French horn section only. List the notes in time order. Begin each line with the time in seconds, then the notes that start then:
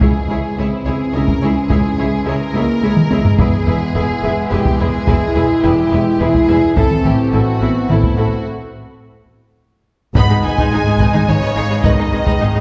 0.00 G#3
0.56 C4
1.13 C#4
1.69 C#4
2.55 A#3
2.84 G#3
3.41 B3
5.06 E4
6.21 E4
6.76 C4
7.59 B3
7.89 A3
10.14 D#3 B3
11.84 D#3 B3